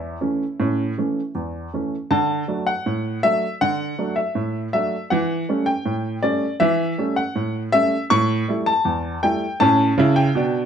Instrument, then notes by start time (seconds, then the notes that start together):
upright piano
Already playing: E2 E4 C#5 E5
0.21 E3 A3 C#4
0.60 A2 C#4
0.98 E3 A3 C#4
1.35 E2
1.74 E3 A3 C#4
2.11 D3 A5
2.48 F#3 A3 D4
2.67 F#5
2.86 A2
3.23 F#3 A3 D4 E5
3.61 D3 F#5
3.99 F#3 A3 D4
4.16 E5
4.35 A2
4.73 F#3 A3 D4 E5
5.10 E3 F#5
5.49 G3 A3 C#4
5.66 G5
5.86 A2
6.23 G3 A3 C#4 D5
6.60 E3 E5
6.98 G3 A3 C#4
7.16 F#5
7.36 A2
7.72 G3 A3 C#4 E5
8.10 A2 C#6
8.48 G3 A3 E4
8.66 A5
8.85 E2
9.23 G3 A3 E4 G5
9.60 A2 C#4 A5
9.98 C#3 E4
10.16 G5
10.35 B2 D4